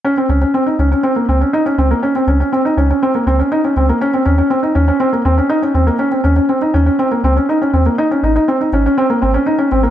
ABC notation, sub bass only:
X:1
M:4/4
L:1/8
Q:1/4=121
K:Bbdor
V:1 name="Sub bass" clef=bass
z D,, z D,, z D,, z D,, | z D,, z D,, z D,, z D,, | z E,, z E,, z E,, z E,, | z E,, z E,, z D,, z E,, |
z A,,, z A,,, z A,,, z A,,, |]